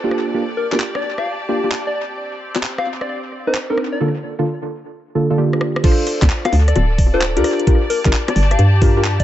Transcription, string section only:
0, 0, Header, 1, 2, 480
1, 0, Start_track
1, 0, Key_signature, -2, "minor"
1, 0, Tempo, 458015
1, 358, Time_signature, 4, 2, 24, 8
1, 9681, End_track
2, 0, Start_track
2, 0, Title_t, "String section"
2, 0, Program_c, 0, 48
2, 0, Note_on_c, 0, 62, 77
2, 0, Note_on_c, 0, 69, 78
2, 0, Note_on_c, 0, 74, 80
2, 118, Note_on_c, 0, 67, 82
2, 901, Note_off_c, 0, 69, 0
2, 902, Note_off_c, 0, 62, 0
2, 1012, Note_on_c, 0, 81, 68
2, 2039, Note_on_c, 0, 60, 73
2, 2772, Note_off_c, 0, 81, 0
2, 4198, Note_off_c, 0, 67, 0
2, 4198, Note_off_c, 0, 74, 0
2, 4199, Note_off_c, 0, 60, 0
2, 6299, Note_on_c, 0, 69, 83
2, 6406, Note_on_c, 0, 74, 82
2, 7799, Note_on_c, 0, 67, 84
2, 8278, Note_on_c, 0, 81, 93
2, 8457, Note_off_c, 0, 69, 0
2, 9681, Note_off_c, 0, 67, 0
2, 9681, Note_off_c, 0, 74, 0
2, 9681, Note_off_c, 0, 81, 0
2, 9681, End_track
0, 0, End_of_file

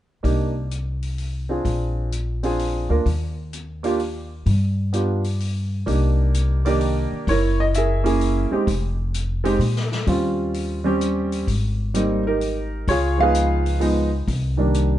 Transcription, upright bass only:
0, 0, Header, 1, 3, 480
1, 0, Start_track
1, 0, Key_signature, -3, "minor"
1, 0, Tempo, 467654
1, 246, Time_signature, 3, 2, 24, 8
1, 15384, End_track
2, 0, Start_track
2, 0, Title_t, "Upright bass"
2, 0, Program_c, 0, 32
2, 248, Note_on_c, 0, 36, 63
2, 1649, Note_off_c, 0, 36, 0
2, 1692, Note_on_c, 0, 34, 69
2, 2933, Note_off_c, 0, 34, 0
2, 2975, Note_on_c, 0, 38, 64
2, 3123, Note_off_c, 0, 38, 0
2, 3139, Note_on_c, 0, 39, 66
2, 4538, Note_off_c, 0, 39, 0
2, 4578, Note_on_c, 0, 43, 72
2, 5978, Note_off_c, 0, 43, 0
2, 6021, Note_on_c, 0, 36, 76
2, 7259, Note_off_c, 0, 36, 0
2, 7466, Note_on_c, 0, 30, 77
2, 8702, Note_off_c, 0, 30, 0
2, 8902, Note_on_c, 0, 29, 74
2, 9819, Note_off_c, 0, 29, 0
2, 9843, Note_on_c, 0, 46, 64
2, 10297, Note_off_c, 0, 46, 0
2, 10334, Note_on_c, 0, 39, 71
2, 11733, Note_off_c, 0, 39, 0
2, 11778, Note_on_c, 0, 32, 71
2, 13174, Note_off_c, 0, 32, 0
2, 13216, Note_on_c, 0, 37, 72
2, 14612, Note_off_c, 0, 37, 0
2, 14654, Note_on_c, 0, 36, 76
2, 15384, Note_off_c, 0, 36, 0
2, 15384, End_track
3, 0, Start_track
3, 0, Title_t, "Muted upright bass strokes"
3, 7306, Note_on_c, 9, 29, 36
3, 7409, Note_off_c, 9, 29, 0
3, 8738, Note_on_c, 9, 29, 36
3, 8841, Note_off_c, 9, 29, 0
3, 15384, End_track
0, 0, End_of_file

